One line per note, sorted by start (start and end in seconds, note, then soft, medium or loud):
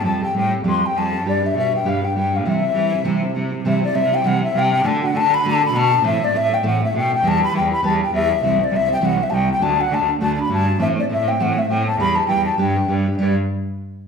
0.04 0.29 F2 medium
0.04 0.21 F3 medium
0.04 0.22 G3 medium
0.04 0.22 C4 medium
0.04 0.21 G4 medium
0.04 0.20 A4 medium
0.04 0.21 A5 medium
0.21 0.33 C4 soft
0.21 0.35 G4 soft
0.21 0.34 A4 medium
0.21 0.34 G5 loud
0.34 0.60 A2 loud
0.34 0.51 G3 medium
0.34 0.51 C4 medium
0.34 0.51 G4 medium
0.34 0.50 A4 medium
0.34 0.52 G5 loud
0.51 0.64 C4 soft
0.51 0.64 G4 soft
0.51 0.64 A4 soft
0.64 0.90 F2 medium
0.64 0.81 F3 medium
0.64 0.81 G3 medium
0.64 0.82 C4 medium
0.64 0.82 G4 medium
0.64 0.80 A4 medium
0.69 0.87 C6 loud
0.81 0.95 C4 soft
0.81 0.95 G4 soft
0.81 0.94 A4 soft
0.81 0.99 G5 loud
0.94 1.25 F2 medium
0.94 1.12 G3 medium
0.94 1.13 C4 medium
0.94 1.12 G4 medium
0.94 1.11 A4 medium
0.94 1.26 A5 loud
1.12 1.26 C4 soft
1.12 1.25 G4 soft
1.12 1.25 A4 soft
1.24 1.49 G2 medium
1.24 1.42 G3 medium
1.24 1.42 D4 medium
1.24 1.42 G4 medium
1.24 1.41 B4 medium
1.28 1.47 D5 medium
1.42 1.55 D4 soft
1.42 1.55 G4 medium
1.42 1.55 B4 medium
1.42 1.57 E5 medium
1.54 1.79 B2 medium
1.54 1.72 G3 medium
1.54 1.73 D4 medium
1.54 1.72 G4 medium
1.54 1.71 B4 medium
1.54 1.72 E5 loud
1.72 1.84 D4 soft
1.72 1.85 G4 soft
1.72 1.85 B4 medium
1.72 1.89 G5 medium
1.84 2.09 G2 medium
1.84 2.01 G3 medium
1.84 2.02 D4 medium
1.84 2.02 G4 medium
1.84 2.00 B4 medium
1.84 2.06 F5 medium
2.02 2.15 D4 soft
2.02 2.15 G4 medium
2.02 2.15 B4 medium
2.02 2.16 G5 medium
2.15 2.47 G2 medium
2.15 2.32 G3 medium
2.15 2.32 D4 medium
2.15 2.32 G4 medium
2.15 2.31 B4 medium
2.15 2.37 G5 medium
2.32 2.46 D4 soft
2.32 2.45 G4 soft
2.32 2.45 B4 soft
2.32 2.46 F5 medium
2.45 2.62 C3 medium
2.45 2.70 C3 medium
2.45 2.62 E3 medium
2.45 2.62 G3 medium
2.45 2.62 C4 medium
2.45 2.61 E4 medium
2.45 2.61 C5 medium
2.45 3.32 E5 loud
2.62 2.73 G3 soft
2.62 2.74 C4 medium
2.62 2.75 E4 soft
2.62 2.75 C5 soft
2.74 2.99 E3 medium
2.74 2.91 G3 medium
2.74 2.92 C4 medium
2.74 2.92 E4 medium
2.74 2.91 C5 medium
2.92 3.04 G3 soft
2.92 3.04 C4 soft
2.92 3.04 E4 medium
2.92 3.05 C5 medium
3.03 3.29 C3 medium
3.03 3.22 C3 medium
3.03 3.22 E3 medium
3.03 3.22 G3 loud
3.03 3.22 C4 medium
3.03 3.22 E4 loud
3.03 3.22 C5 medium
3.23 3.34 G3 soft
3.23 3.35 C4 medium
3.23 3.35 E4 medium
3.23 3.35 C5 medium
3.34 3.59 C3 medium
3.34 3.52 G3 medium
3.34 3.52 C4 medium
3.34 3.51 E4 medium
3.34 3.51 C5 medium
3.52 3.64 G3 soft
3.52 3.64 C4 soft
3.52 3.65 E4 soft
3.52 3.65 C5 medium
3.64 3.89 C3 loud
3.64 3.82 C3 medium
3.64 3.82 E3 medium
3.64 3.82 G3 medium
3.64 3.82 C4 loud
3.64 3.81 E4 medium
3.64 3.81 C5 medium
3.64 3.82 E5 loud
3.82 3.93 G3 medium
3.82 3.94 C4 soft
3.82 3.94 E4 medium
3.82 3.95 C5 medium
3.82 3.96 D5 loud
3.94 4.02 C3 medium
3.94 4.11 G3 medium
3.94 4.12 C4 medium
3.94 4.11 E4 medium
3.94 4.11 C5 medium
3.94 4.15 E5 loud
4.03 4.21 C3 loud
4.12 4.23 G3 soft
4.12 4.23 C4 soft
4.12 4.23 E4 medium
4.12 4.24 C5 medium
4.12 4.28 G5 loud
4.24 4.41 C3 medium
4.24 4.50 C3 loud
4.24 4.41 E3 medium
4.24 4.41 G3 medium
4.24 4.41 C4 medium
4.24 4.40 E4 medium
4.24 4.39 C5 medium
4.24 4.42 F#5 loud
4.41 4.53 G3 soft
4.41 4.54 C4 soft
4.41 4.54 E4 medium
4.41 4.54 C5 medium
4.41 4.60 E5 loud
4.54 4.79 C3 loud
4.54 4.71 G3 medium
4.54 4.71 C4 medium
4.54 4.71 E4 medium
4.54 4.70 C5 medium
4.58 4.72 G5 loud
4.71 4.83 G3 soft
4.71 4.84 C4 soft
4.71 4.85 E4 soft
4.71 4.84 C5 soft
4.71 4.87 G5 loud
4.83 5.01 D3 medium
4.83 5.10 D3 loud
4.83 5.01 A3 medium
4.83 5.01 D4 medium
4.83 5.01 F#4 medium
4.83 5.00 A4 loud
4.83 5.02 A5 loud
5.02 5.14 D4 medium
5.02 5.14 F#4 medium
5.02 5.14 A4 medium
5.02 5.18 F#5 loud
5.14 5.21 D3 loud
5.14 5.31 A3 medium
5.14 5.31 D4 medium
5.14 5.31 F#4 medium
5.14 5.29 A4 medium
5.14 5.35 A5 loud
5.23 5.40 D3 loud
5.30 5.44 D4 soft
5.30 5.44 F#4 medium
5.30 5.44 A4 medium
5.30 5.45 B5 loud
5.44 5.69 D3 loud
5.44 5.61 D3 medium
5.44 5.62 A3 loud
5.44 5.62 D4 loud
5.44 5.61 F#4 medium
5.44 5.61 A4 loud
5.49 5.62 A5 loud
5.62 5.73 D4 medium
5.62 5.74 F#4 medium
5.62 5.74 A4 medium
5.62 5.78 B5 loud
5.73 5.98 B2 loud
5.73 5.91 A3 medium
5.73 5.91 D4 medium
5.73 5.91 F#4 medium
5.73 5.90 A4 medium
5.73 6.05 A5 loud
5.91 6.04 D4 soft
5.91 6.04 F#4 soft
5.91 6.03 A4 medium
6.03 6.28 A2 loud
6.03 6.20 A2 medium
6.03 6.21 E3 medium
6.03 6.21 A3 medium
6.03 6.21 C4 loud
6.03 6.20 E4 loud
6.03 6.19 A4 medium
6.03 6.25 E5 loud
6.20 6.32 A3 medium
6.20 6.32 C4 medium
6.20 6.34 E4 medium
6.20 6.33 A4 medium
6.20 6.38 D5 loud
6.33 6.40 A2 loud
6.33 6.50 A3 medium
6.33 6.50 C4 medium
6.33 6.49 E4 medium
6.33 6.48 A4 medium
6.33 6.55 E5 loud
6.42 6.60 A2 medium
6.49 6.62 A3 soft
6.49 6.63 C4 soft
6.49 6.63 E4 medium
6.49 6.63 A4 medium
6.53 6.65 G5 medium
6.63 6.80 A2 medium
6.63 6.89 A2 medium
6.63 6.80 E3 medium
6.63 6.80 A3 medium
6.63 6.81 C4 medium
6.63 6.80 E4 loud
6.63 6.80 A4 medium
6.63 6.81 F#5 loud
6.81 6.92 A3 medium
6.81 6.93 C4 soft
6.81 6.94 E4 medium
6.81 6.94 A4 medium
6.81 6.94 E5 loud
6.93 7.18 B2 loud
6.93 7.10 A3 medium
6.93 7.10 C4 medium
6.93 7.10 E4 medium
6.93 7.09 A4 medium
6.93 7.11 G5 loud
7.10 7.24 A3 soft
7.10 7.24 C4 soft
7.10 7.23 E4 soft
7.10 7.23 A4 soft
7.10 7.29 G5 loud
7.23 7.48 E2 loud
7.23 7.40 E3 medium
7.23 7.40 G3 medium
7.23 7.41 E4 medium
7.23 7.39 G4 loud
7.23 7.39 B4 medium
7.27 7.42 A5 loud
7.40 7.52 E4 soft
7.40 7.53 G4 medium
7.40 7.53 B4 medium
7.40 7.54 B5 loud
7.53 7.60 E3 loud
7.53 7.70 G3 medium
7.53 7.70 E4 medium
7.53 7.69 G4 medium
7.53 7.69 B4 medium
7.53 7.70 G5 loud
7.63 7.80 E2 medium
7.70 7.82 E4 medium
7.70 7.83 G4 medium
7.70 7.83 B4 medium
7.70 7.83 B5 loud
7.83 8.08 E2 loud
7.83 7.99 E3 medium
7.83 8.00 G3 medium
7.83 8.00 E4 medium
7.83 7.99 G4 medium
7.83 7.97 B4 loud
7.83 7.99 A5 loud
7.99 8.12 E4 soft
7.99 8.13 G4 soft
7.99 8.12 B4 medium
8.03 8.13 G5 medium
8.12 8.37 E2 loud
8.12 8.29 G3 medium
8.12 8.30 E4 medium
8.12 8.30 G4 medium
8.12 8.29 B4 medium
8.12 8.41 E5 loud
8.31 8.43 E4 soft
8.31 8.43 G4 soft
8.31 8.43 B4 soft
8.43 8.67 C2 loud
8.43 8.59 C3 medium
8.43 8.60 E3 medium
8.43 8.60 G3 medium
8.43 8.60 C4 loud
8.43 8.59 E4 medium
8.43 8.58 C5 medium
8.43 8.65 E5 loud
8.59 8.70 G3 soft
8.59 8.71 C4 soft
8.59 8.71 E4 medium
8.59 8.72 C5 medium
8.63 8.77 D5 loud
8.71 8.79 C3 medium
8.71 8.89 G3 medium
8.71 8.89 C4 medium
8.71 8.88 E4 medium
8.71 8.87 C5 medium
8.75 8.91 E5 loud
8.80 8.98 C2 medium
8.88 9.01 G3 soft
8.88 9.01 C4 medium
8.88 9.01 E4 medium
8.88 9.01 C5 medium
8.92 9.06 G5 loud
9.01 9.26 C2 loud
9.01 9.19 C3 medium
9.01 9.18 E3 loud
9.01 9.18 G3 loud
9.01 9.18 C4 medium
9.01 9.17 E4 medium
9.01 9.16 C5 medium
9.01 9.24 F#5 loud
9.17 9.29 G3 medium
9.17 9.30 C4 medium
9.17 9.31 E4 soft
9.17 9.31 C5 medium
9.23 9.31 E5 medium
9.29 9.56 C2 loud
9.29 9.48 G3 medium
9.29 9.48 C4 medium
9.29 9.47 E4 medium
9.29 9.46 C5 medium
9.29 9.49 G5 loud
9.29 9.35 A5 medium
9.47 9.61 G3 soft
9.47 9.61 C4 soft
9.47 9.62 E4 medium
9.47 9.61 C5 soft
9.52 9.64 G5 loud
9.61 9.86 D2 loud
9.61 9.78 D3 medium
9.61 9.78 A3 medium
9.61 9.79 D4 medium
9.61 9.78 F#4 medium
9.61 9.77 D5 medium
9.61 9.82 A5 loud
9.78 9.91 D4 soft
9.78 9.91 F#4 medium
9.78 9.91 D5 medium
9.78 9.95 F#5 loud
9.91 9.98 D3 loud
9.91 10.08 A3 medium
9.91 10.08 D4 medium
9.91 10.07 F#4 medium
9.91 10.05 D5 medium
9.91 10.09 A5 loud
9.99 10.17 D2 loud
10.07 10.20 D4 soft
10.07 10.21 F#4 medium
10.07 10.20 D5 medium
10.20 10.45 D2 loud
10.20 10.38 D3 medium
10.20 10.38 A3 medium
10.20 10.37 D4 medium
10.20 10.36 F#4 medium
10.20 10.35 D5 medium
10.20 10.33 A5 loud
10.34 10.49 F#4 soft
10.34 10.50 D5 medium
10.34 10.41 A5 medium
10.39 10.49 D4 soft
10.39 10.52 B5 loud
10.49 10.75 G2 loud
10.49 10.67 A3 medium
10.49 10.67 D4 medium
10.49 10.66 F#4 medium
10.49 10.65 D5 medium
10.49 10.79 A5 loud
10.66 10.80 D4 soft
10.66 10.80 F#4 soft
10.66 10.80 D5 soft
10.79 10.97 A2 medium
10.79 11.05 A2 loud
10.79 10.97 E3 medium
10.79 10.97 A3 medium
10.79 10.96 C4 loud
10.79 10.96 E4 loud
10.79 10.95 C5 medium
10.79 10.87 E5 loud
10.96 11.08 A3 soft
10.96 11.08 C4 soft
10.96 11.09 E4 medium
10.96 11.10 C5 medium
10.96 11.04 D5 loud
11.09 11.17 A2 medium
11.09 11.27 A3 medium
11.09 11.27 C4 medium
11.09 11.26 E4 medium
11.09 11.26 C5 medium
11.09 11.29 E5 loud
11.19 11.37 A2 loud
11.27 11.39 A3 soft
11.27 11.39 C4 medium
11.27 11.40 E4 soft
11.27 11.40 C5 medium
11.27 11.43 G5 loud
11.39 11.65 A2 loud
11.39 11.57 A2 medium
11.39 11.57 E3 medium
11.39 11.57 A3 medium
11.39 11.56 C4 loud
11.39 11.55 E4 loud
11.39 11.54 C5 medium
11.39 11.60 F#5 medium
11.56 11.67 A3 soft
11.56 11.68 C4 medium
11.56 11.69 E4 medium
11.56 11.69 E5 loud
11.68 11.95 A2 loud
11.68 11.86 A3 medium
11.68 11.86 C4 medium
11.68 11.85 E4 medium
11.68 11.84 C5 medium
11.68 11.85 G5 loud
11.86 11.99 A3 soft
11.86 12.00 C4 soft
11.86 11.99 E4 soft
11.86 11.99 C5 soft
11.86 11.98 A5 loud
11.99 12.24 E2 loud
11.99 12.16 E3 medium
11.99 12.17 G3 medium
11.99 12.16 E4 medium
11.99 12.15 G4 medium
11.99 12.14 B4 medium
11.99 12.16 B5 loud
12.15 12.27 E4 soft
12.15 12.28 G4 medium
12.15 12.28 B4 medium
12.15 12.26 A5 medium
12.27 12.36 E3 loud
12.27 12.45 G3 medium
12.27 12.46 E4 medium
12.27 12.44 G4 medium
12.27 12.44 B4 medium
12.27 12.44 G5 loud
12.37 12.55 E2 medium
12.45 12.59 E4 medium
12.45 12.58 G4 soft
12.45 12.58 B4 medium
12.45 12.58 A5 medium
12.58 12.84 G2 loud
12.58 12.75 G3 medium
12.58 12.76 D4 medium
12.58 12.75 G4 medium
12.58 12.74 B4 medium
12.58 12.93 G5 medium
12.76 12.87 D4 soft
12.76 12.88 G4 soft
12.76 12.89 B4 medium
12.88 13.13 G2 loud
12.88 13.06 G3 medium
12.88 13.06 D4 medium
12.88 13.06 G4 medium
12.88 13.05 B4 medium
13.06 13.19 D4 soft
13.06 13.20 G4 soft
13.06 13.19 B4 medium
13.18 13.35 G2 loud
13.18 13.32 G3 loud
13.18 13.33 D4 medium
13.18 13.33 G4 medium
13.18 13.34 B4 medium
13.18 13.34 D5 medium